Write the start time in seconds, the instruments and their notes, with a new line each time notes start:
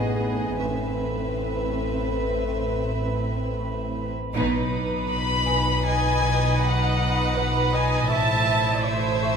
Already playing: double bass section A1, synth drone A1, cello section A2, viola section B3, french horn section B3 G#4, glass harmonica D#4 B4 G#5, violin section G#4 D#5
0.22 marimba A3
0.59 synth drone A1, double bass section A1, marimba A2, cello section A2, french horn section C4 A4, viola section C4, glass harmonica C4 E4 B5, violin section B4 E5
0.97 marimba A3
1.35 marimba A2
1.71 marimba A2
2.10 marimba A2
2.47 marimba A2
2.85 marimba A3
3.22 marimba A2
3.59 marimba A2
3.97 marimba A3
4.35 synth drone B1, double bass section B1, marimba B2, cello section B2, violin section D#4 B4 B5 D6 D#6, glass harmonica D#4 B4 B5
4.72 marimba B2
5.09 marimba B2, violin section B5
5.46 marimba B2, celesta G#5
5.85 marimba B2, viola section D#5, violin section G#5
6.22 marimba B2, viola section D#5
6.60 marimba B2, viola section D#5, violin section F#5
6.97 marimba B2
7.35 marimba B2, viola section B4
7.72 marimba B2, viola section D#5, violin section G#5, celesta D#6
8.10 double bass section A1, synth drone A1, marimba A2, cello section A2, violin section E4 C5 A5, glass harmonica E4 C5 A5, viola section E5
8.47 marimba A2
8.85 marimba A2, viola section C5, violin section E5
9.23 marimba A2